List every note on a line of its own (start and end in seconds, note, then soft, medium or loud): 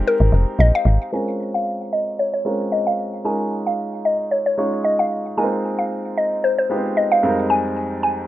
0.00 1.12 G#3 medium
0.00 1.13 C4 medium
0.00 1.14 D#4 medium
0.00 1.14 G4 medium
0.00 1.13 A#4 loud
0.07 0.82 A#4 medium
0.20 0.31 G#1 loud
0.32 0.45 F1 loud
0.59 0.72 A#1 loud
0.59 0.67 D#5 medium
0.75 1.14 F5 medium
0.85 0.98 G#1 loud
1.12 1.98 G#3 medium
1.12 1.98 C4 medium
1.12 1.98 C#4 medium
1.12 1.98 F4 medium
1.12 1.98 A#4 medium
1.12 1.51 G#5 loud
1.54 1.90 F5 medium
1.93 2.19 D#5 medium
2.19 2.32 C#5 medium
2.34 2.69 C#5 medium
2.45 3.10 G#3 medium
2.45 3.10 C4 medium
2.45 3.10 C#4 medium
2.45 3.10 F4 medium
2.45 3.10 A#4 medium
2.72 2.85 D#5 medium
2.87 3.22 F5 medium
3.24 4.10 G#3 medium
3.24 4.10 C#4 medium
3.24 4.10 D#4 medium
3.24 4.10 F4 medium
3.24 4.10 A#4 medium
3.24 3.67 G#5 loud
3.67 4.06 F5 medium
4.05 4.32 D#5 medium
4.31 4.38 C#5 medium
4.46 4.85 C#5 medium
4.57 5.22 G#3 medium
4.57 5.22 C#4 medium
4.57 5.22 D#4 medium
4.57 5.22 F4 medium
4.57 5.23 C#5 medium
4.84 4.99 D#5 medium
4.99 5.35 F5 medium
5.37 6.22 G#3 medium
5.37 5.44 A#3 medium
5.37 6.23 D#4 medium
5.37 6.23 F4 medium
5.37 6.23 A#4 medium
5.37 5.80 G#5 loud
5.44 6.26 C4 medium
5.79 6.18 F5 loud
6.17 6.42 D#5 loud
6.44 6.57 C5 medium
6.58 6.98 C5 medium
6.70 7.21 G#3 medium
6.70 6.77 B3 medium
6.70 7.22 D#4 medium
6.70 7.23 F4 medium
6.70 7.23 G4 medium
6.76 7.22 C4 medium
6.97 7.12 D#5 loud
7.12 7.51 F5 loud
7.23 8.08 F2 medium
7.23 8.09 G3 medium
7.23 8.08 G#3 medium
7.23 8.08 C4 medium
7.23 8.08 D#4 medium
7.23 8.09 A#4 medium
7.50 8.02 G#5 loud
8.03 8.27 G#5 loud